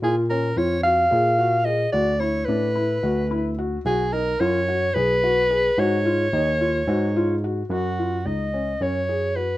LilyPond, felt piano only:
\new Staff \with { instrumentName = "Felt piano" } { \time 7/8 \key fis \major \tempo 4 = 109 eis'8 cis'8 eis'8 fis'8 gis'8 fis'8 gis'8 | fis'8 e'8 d'8 e'8 fis'8 e'8 fis'8 | fis'8 dis'8 eis'8 fis'8 gis'8 fis'8 gis'8 | fis'8 eis'8 dis'8 eis'8 fis'8 eis'8 fis'8 |
fis'8 eis'8 dis'8 cis'8 cis'8 gis'8 fis'8 | }